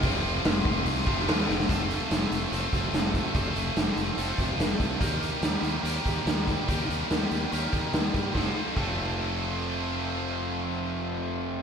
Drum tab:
CC |----------------|----------------|----------------|----------------|
HH |o---o---o---o---|x-x-x-x-x-x-x-x-|x-x-x-x-x-x-x-x-|x-x-x-x-x-x-x-x-|
SD |----o------oo-oo|----o-------o---|----o-------o---|----o-------o---|
BD |o-----o---o-----|o---------o---o-|o---------o---o-|o---------o---o-|

CC |----------------|----x-----------|----------------|
HH |x-x-x-x-x-x-x-x-|----------------|----------------|
SD |----o-------o---|o---------------|----------------|
BD |o---------o---o-|o---o-----------|----------------|